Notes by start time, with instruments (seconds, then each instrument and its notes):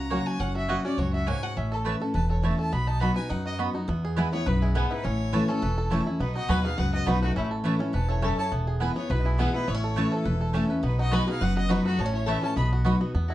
Already playing: upright bass C#2, steel-string acoustic guitar C#3, five-string banjo C#4 F#4, fiddle A#5
0.10 steel-string acoustic guitar F#3 A#3 C#4 F#4, mandolin A#3 F#4 C#5 F#5, five-string banjo C#4
0.26 five-string banjo F#4, fiddle G#5
0.40 upright bass F#1, steel-string acoustic guitar F#2, five-string banjo C#4, fiddle F#5
0.55 five-string banjo F#4, fiddle E5
0.68 steel-string acoustic guitar F#3 A#3 C#4 F#4, mandolin A#3 F#4 C#5 F#5, five-string banjo F#4, fiddle D#5
0.84 five-string banjo C#4, steel-string acoustic guitar C#4 F#4, fiddle D5
0.98 upright bass C#2, steel-string acoustic guitar F#2, five-string banjo F#4, fiddle C#5
1.13 five-string banjo F#4, fiddle E5
1.26 steel-string acoustic guitar G#2, mandolin A#3 F#4 C#5 F#5, five-string banjo C#4, fiddle G#5
1.43 five-string banjo F#4, fiddle F#5
1.57 upright bass A1, steel-string acoustic guitar A2, five-string banjo C#4, fiddle E5
1.72 five-string banjo A4, fiddle A4
1.85 steel-string acoustic guitar E3 A3 C#4 E4, mandolin A3 E4 C#5 A5, five-string banjo B4
2.00 steel-string acoustic guitar C#4 E4, five-string banjo A4
2.14 upright bass E1, steel-string acoustic guitar E2, five-string banjo B4, fiddle A5
2.30 five-string banjo A4, fiddle C#5
2.42 steel-string acoustic guitar E3 A3 C#4 E4, mandolin A3 E4 C#5 A5, five-string banjo A3, fiddle E5
2.59 five-string banjo A4, fiddle A5
2.72 upright bass B1, steel-string acoustic guitar B2, five-string banjo B3, fiddle B5
2.87 five-string banjo D#4, fiddle A5
3.00 steel-string acoustic guitar F#3 B3 D#4 F#4, mandolin B3 F#4 D#5 B5, five-string banjo F#4, fiddle B5
3.16 steel-string acoustic guitar D#4 F#4, five-string banjo B4, fiddle G#5
3.30 steel-string acoustic guitar F#2, upright bass F#2, five-string banjo D#4, fiddle F#5
3.46 five-string banjo F#4, fiddle D#5
3.59 steel-string acoustic guitar F#3 B3 D#4 F#4, mandolin B3 F#4 D#5 B5, five-string banjo B3
3.73 five-string banjo D#4, steel-string acoustic guitar D#4 F#4
3.88 steel-string acoustic guitar E2, upright bass E2, five-string banjo B3
4.05 five-string banjo G#4
4.16 steel-string acoustic guitar E3 G#3 B3 E4, mandolin B3 E4 B4 G#5, five-string banjo B4
4.32 five-string banjo B3, steel-string acoustic guitar B3 E4, resonator guitar played with a steel bar E4, fiddle C#5
4.46 upright bass B1, steel-string acoustic guitar F#2, resonator guitar played with a steel bar E4, five-string banjo B4, fiddle B4
4.62 resonator guitar played with a steel bar G#3, fiddle E4, five-string banjo G#4
4.75 steel-string acoustic guitar G#2, mandolin B3 E4 B4 G#5, five-string banjo B3, resonator guitar played with a steel bar B3, fiddle G#4
4.91 resonator guitar played with a steel bar D#4, five-string banjo E4, fiddle B4
5.04 upright bass A1, steel-string acoustic guitar A2, five-string banjo C#4, resonator guitar played with a steel bar E4, fiddle C#5
5.33 steel-string acoustic guitar E3 A3 C#4 E4, mandolin A3 E4 C#5 A5, five-string banjo B4
5.48 five-string banjo C#4, resonator guitar played with a steel bar C#4, steel-string acoustic guitar C#4 E4, fiddle A4
5.62 upright bass E1, steel-string acoustic guitar E2, five-string banjo B4
5.78 five-string banjo A4
5.90 steel-string acoustic guitar E3 A3 C#4 E4, mandolin A3 E4 C#5 A5, five-string banjo C#4
6.06 steel-string acoustic guitar C#4 E4, five-string banjo E4
6.20 upright bass B1, steel-string acoustic guitar B2, five-string banjo B3, resonator guitar played with a steel bar D#4, fiddle B4
6.35 five-string banjo D#4, resonator guitar played with a steel bar F#4, fiddle D#5
6.48 upright bass D#2, steel-string acoustic guitar F#3 B3 D#4 F#4, mandolin B3 F#4 D#5 B5, five-string banjo B4, resonator guitar played with a steel bar B4, fiddle G#5
6.63 five-string banjo B3, steel-string acoustic guitar D#4 F#4, resonator guitar played with a steel bar G#4, fiddle F5
6.78 upright bass C#2, steel-string acoustic guitar F#2, five-string banjo F#4, resonator guitar played with a steel bar B4, fiddle F#5
6.94 five-string banjo B3, resonator guitar played with a steel bar F#4, fiddle D#5
7.06 upright bass B1, steel-string acoustic guitar F#3 B3 D#4 F#4, mandolin B3 F#4 D#5 B5, five-string banjo D#4, resonator guitar played with a steel bar D#4, fiddle B4
7.21 resonator guitar played with a steel bar A3, steel-string acoustic guitar D#4 F#4, fiddle F#4, five-string banjo B4
7.36 upright bass A1, steel-string acoustic guitar A2, resonator guitar played with a steel bar A3, five-string banjo C#4, fiddle E4
7.51 five-string banjo A4
7.64 steel-string acoustic guitar E3 A3 C#4 E4, mandolin A3 E4 C#5 A5, five-string banjo B4
7.79 five-string banjo C#4, steel-string acoustic guitar C#4 E4
7.93 upright bass E1, steel-string acoustic guitar G#2, five-string banjo B4, resonator guitar played with a steel bar C#5, fiddle A5
8.09 resonator guitar played with a steel bar E4, five-string banjo A4, fiddle C#5
8.22 steel-string acoustic guitar F#2, mandolin A3 E4 C#5 A5, five-string banjo C#4, resonator guitar played with a steel bar A4, fiddle E5
8.37 five-string banjo E4, resonator guitar played with a steel bar C#5, fiddle A5
8.52 upright bass E1, steel-string acoustic guitar E2, five-string banjo B3
8.67 five-string banjo G#4
8.80 steel-string acoustic guitar E3 G#3 B3 E4, mandolin B3 E4 B4 G#5, five-string banjo B4
8.96 five-string banjo B3, steel-string acoustic guitar B3 E4, resonator guitar played with a steel bar E4, fiddle C#5
9.10 upright bass B1, steel-string acoustic guitar B2, resonator guitar played with a steel bar E4, fiddle B4, five-string banjo B4
9.25 resonator guitar played with a steel bar G#3, fiddle E4, five-string banjo G#4
9.38 steel-string acoustic guitar E3 G#3 B3 E4, mandolin B3 E4 B4 G#5, five-string banjo B3, resonator guitar played with a steel bar B3, fiddle G#4
9.54 steel-string acoustic guitar B3 E4, resonator guitar played with a steel bar D#4, five-string banjo E4, fiddle B4
9.68 upright bass A1, five-string banjo B3, resonator guitar played with a steel bar E4, fiddle C#5
9.74 five-string banjo C#4
9.84 five-string banjo A4
9.96 steel-string acoustic guitar E3 A3 C#4 E4, mandolin A3 E4 C#5 A5, five-string banjo B4
10.12 resonator guitar played with a steel bar C#4, five-string banjo A4, fiddle A4
10.25 upright bass E1, steel-string acoustic guitar E2, five-string banjo B4
10.41 five-string banjo A4
10.53 steel-string acoustic guitar E3 A3 C#4 E4, mandolin A3 E4 C#5 A5, five-string banjo C#4
10.69 steel-string acoustic guitar C#4 E4, five-string banjo B4
10.83 upright bass B1, steel-string acoustic guitar B2, five-string banjo B3, resonator guitar played with a steel bar D#4, fiddle B4
10.99 five-string banjo D#4, resonator guitar played with a steel bar F#4, fiddle D#5
11.11 steel-string acoustic guitar F#3 B3 D#4 F#4, mandolin B3 F#4 D#5 B5, resonator guitar played with a steel bar B4, five-string banjo B4, fiddle G#5
11.26 five-string banjo B3, steel-string acoustic guitar D#4 F#4, resonator guitar played with a steel bar G#4, fiddle F5
11.41 upright bass F#1, steel-string acoustic guitar F#2, five-string banjo F#4, resonator guitar played with a steel bar B4, fiddle F#5
11.57 five-string banjo B3, resonator guitar played with a steel bar F#4, fiddle D#5
11.69 steel-string acoustic guitar F#3 B3 D#4 F#4, mandolin B3 F#4 D#5 B5, resonator guitar played with a steel bar D#4, five-string banjo D#4, fiddle B4
11.84 resonator guitar played with a steel bar A3, steel-string acoustic guitar D#4 F#4, fiddle F#4, five-string banjo B4
11.98 upright bass A1, steel-string acoustic guitar A2, five-string banjo B3, resonator guitar played with a steel bar C#5, fiddle A5
12.06 five-string banjo C#4
12.13 resonator guitar played with a steel bar E4, fiddle C#5
12.26 steel-string acoustic guitar E3 A3 C#4 E4, mandolin A3 E4 C#5 A5, resonator guitar played with a steel bar A4, five-string banjo B4, fiddle E5
12.42 five-string banjo C#4, steel-string acoustic guitar C#4 E4, resonator guitar played with a steel bar C#5, fiddle A5
12.56 upright bass B1, steel-string acoustic guitar B2, five-string banjo B3, resonator guitar played with a steel bar D#5, fiddle B5
12.73 five-string banjo F#4
12.85 steel-string acoustic guitar F#3 B3 D#4 F#4, mandolin B3 F#4 D#5 B5, five-string banjo B4
13.00 five-string banjo B3, steel-string acoustic guitar D#4 F#4
13.14 upright bass E2, steel-string acoustic guitar E2, five-string banjo B3
13.28 five-string banjo E4, resonator guitar played with a steel bar F#4